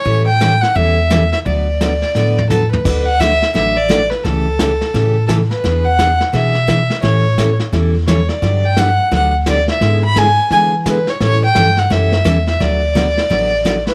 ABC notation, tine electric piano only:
X:1
M:4/4
L:1/8
Q:"Swing" 1/4=172
K:D
V:1 name="Tine electric piano" clef=bass
A,,4 E,,4 | D,,4 A,,4 | D,,4 A,,,4 | C,,4 A,,4 |
E,,4 B,,4 | A,,4 E,,4 | G,,4 D,,4 | ^G,,4 E,4 |
A,,2 G,,2 F,,2 E,,2 | D,,4 A,,,4 |]